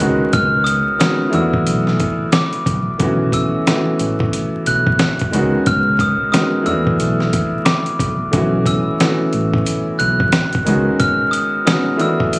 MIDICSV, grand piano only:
0, 0, Header, 1, 2, 480
1, 0, Start_track
1, 0, Tempo, 666667
1, 240, Time_signature, 4, 2, 24, 8
1, 8922, End_track
2, 0, Start_track
2, 0, Title_t, "Grand piano"
2, 0, Program_c, 0, 0
2, 0, Control_c, 0, 64, 127
2, 0, Note_on_c, 0, 51, 92
2, 0, Note_on_c, 0, 56, 85
2, 0, Note_on_c, 0, 59, 76
2, 7, Note_on_c, 0, 61, 82
2, 10, Control_c, 0, 64, 0
2, 14, Note_on_c, 0, 66, 102
2, 136, Control_c, 0, 64, 127
2, 604, Note_off_c, 0, 51, 0
2, 608, Note_off_c, 0, 56, 0
2, 611, Note_off_c, 0, 59, 0
2, 615, Note_off_c, 0, 61, 0
2, 619, Note_off_c, 0, 66, 0
2, 709, Note_on_c, 0, 51, 89
2, 716, Note_on_c, 0, 56, 83
2, 723, Note_on_c, 0, 59, 81
2, 730, Note_on_c, 0, 61, 88
2, 737, Note_on_c, 0, 66, 103
2, 934, Note_on_c, 0, 52, 99
2, 938, Note_off_c, 0, 59, 0
2, 941, Note_on_c, 0, 57, 87
2, 949, Note_on_c, 0, 59, 90
2, 952, Note_off_c, 0, 66, 0
2, 954, Note_off_c, 0, 51, 0
2, 955, Note_on_c, 0, 62, 85
2, 958, Note_off_c, 0, 56, 0
2, 962, Note_on_c, 0, 66, 103
2, 965, Note_off_c, 0, 61, 0
2, 969, Control_c, 0, 64, 0
2, 1101, Control_c, 0, 64, 127
2, 1744, Note_off_c, 0, 52, 0
2, 1748, Note_off_c, 0, 57, 0
2, 1752, Note_off_c, 0, 59, 0
2, 1755, Note_off_c, 0, 62, 0
2, 1759, Note_off_c, 0, 66, 0
2, 2144, Note_on_c, 0, 51, 73
2, 2151, Note_on_c, 0, 57, 83
2, 2158, Note_on_c, 0, 59, 78
2, 2165, Note_on_c, 0, 61, 82
2, 2169, Control_c, 0, 64, 0
2, 2172, Note_on_c, 0, 66, 102
2, 2190, Note_on_c, 0, 52, 90
2, 2209, Note_off_c, 0, 51, 0
2, 2275, Control_c, 0, 64, 127
2, 2567, Note_off_c, 0, 57, 0
2, 2570, Note_off_c, 0, 59, 0
2, 2574, Note_off_c, 0, 61, 0
2, 2578, Note_off_c, 0, 66, 0
2, 2587, Note_off_c, 0, 52, 0
2, 2646, Note_on_c, 0, 52, 87
2, 2652, Note_on_c, 0, 57, 76
2, 2660, Note_on_c, 0, 59, 75
2, 2666, Note_on_c, 0, 61, 81
2, 2673, Note_on_c, 0, 66, 95
2, 3440, Note_off_c, 0, 52, 0
2, 3444, Note_off_c, 0, 57, 0
2, 3447, Note_off_c, 0, 59, 0
2, 3451, Note_off_c, 0, 61, 0
2, 3454, Note_off_c, 0, 66, 0
2, 3825, Note_on_c, 0, 51, 94
2, 3832, Note_on_c, 0, 56, 86
2, 3839, Note_on_c, 0, 59, 76
2, 3846, Note_on_c, 0, 61, 83
2, 3848, Control_c, 0, 64, 0
2, 3853, Note_on_c, 0, 66, 106
2, 3981, Control_c, 0, 64, 127
2, 4444, Note_off_c, 0, 51, 0
2, 4448, Note_off_c, 0, 56, 0
2, 4451, Note_off_c, 0, 59, 0
2, 4455, Note_off_c, 0, 61, 0
2, 4458, Note_off_c, 0, 66, 0
2, 4547, Note_on_c, 0, 51, 87
2, 4555, Note_on_c, 0, 56, 84
2, 4563, Note_on_c, 0, 59, 79
2, 4570, Note_on_c, 0, 61, 85
2, 4576, Note_on_c, 0, 66, 102
2, 4773, Note_on_c, 0, 52, 98
2, 4777, Note_off_c, 0, 59, 0
2, 4780, Note_on_c, 0, 57, 92
2, 4787, Note_on_c, 0, 59, 86
2, 4791, Note_off_c, 0, 66, 0
2, 4794, Note_off_c, 0, 51, 0
2, 4795, Note_on_c, 0, 62, 87
2, 4797, Note_off_c, 0, 56, 0
2, 4802, Note_on_c, 0, 66, 99
2, 4805, Note_off_c, 0, 61, 0
2, 4810, Control_c, 0, 64, 0
2, 4917, Control_c, 0, 64, 127
2, 5584, Note_off_c, 0, 52, 0
2, 5587, Note_off_c, 0, 57, 0
2, 5591, Note_off_c, 0, 59, 0
2, 5595, Note_off_c, 0, 62, 0
2, 5598, Note_off_c, 0, 66, 0
2, 5981, Note_on_c, 0, 51, 72
2, 5988, Note_on_c, 0, 57, 81
2, 5996, Note_on_c, 0, 59, 76
2, 6003, Note_on_c, 0, 61, 83
2, 6008, Control_c, 0, 64, 0
2, 6009, Note_on_c, 0, 66, 103
2, 6029, Note_on_c, 0, 52, 92
2, 6048, Note_off_c, 0, 51, 0
2, 6138, Control_c, 0, 64, 127
2, 6406, Note_off_c, 0, 57, 0
2, 6410, Note_off_c, 0, 59, 0
2, 6413, Note_off_c, 0, 61, 0
2, 6416, Note_off_c, 0, 66, 0
2, 6426, Note_off_c, 0, 52, 0
2, 6484, Note_on_c, 0, 52, 88
2, 6492, Note_on_c, 0, 57, 77
2, 6498, Note_on_c, 0, 59, 73
2, 6506, Note_on_c, 0, 61, 79
2, 6512, Note_on_c, 0, 66, 95
2, 7280, Note_off_c, 0, 52, 0
2, 7283, Note_off_c, 0, 57, 0
2, 7286, Note_off_c, 0, 59, 0
2, 7290, Note_off_c, 0, 61, 0
2, 7293, Note_off_c, 0, 66, 0
2, 7665, Note_on_c, 0, 51, 88
2, 7673, Note_on_c, 0, 56, 85
2, 7680, Note_on_c, 0, 59, 74
2, 7687, Note_on_c, 0, 61, 83
2, 7690, Control_c, 0, 64, 0
2, 7694, Note_on_c, 0, 66, 106
2, 7835, Control_c, 0, 64, 127
2, 8284, Note_off_c, 0, 51, 0
2, 8288, Note_off_c, 0, 56, 0
2, 8291, Note_off_c, 0, 59, 0
2, 8295, Note_off_c, 0, 61, 0
2, 8299, Note_off_c, 0, 66, 0
2, 8389, Note_on_c, 0, 51, 87
2, 8397, Note_on_c, 0, 56, 82
2, 8404, Note_on_c, 0, 59, 80
2, 8411, Note_on_c, 0, 61, 85
2, 8418, Note_on_c, 0, 66, 102
2, 8614, Note_on_c, 0, 52, 96
2, 8617, Note_off_c, 0, 59, 0
2, 8621, Note_on_c, 0, 57, 91
2, 8628, Note_on_c, 0, 59, 92
2, 8631, Note_off_c, 0, 66, 0
2, 8635, Note_off_c, 0, 51, 0
2, 8636, Note_on_c, 0, 62, 86
2, 8638, Note_off_c, 0, 56, 0
2, 8642, Note_on_c, 0, 66, 100
2, 8646, Note_off_c, 0, 61, 0
2, 8650, Control_c, 0, 64, 0
2, 8792, Control_c, 0, 64, 127
2, 8922, Note_off_c, 0, 52, 0
2, 8922, Note_off_c, 0, 57, 0
2, 8922, Note_off_c, 0, 59, 0
2, 8922, Note_off_c, 0, 62, 0
2, 8922, Note_off_c, 0, 66, 0
2, 8922, End_track
0, 0, End_of_file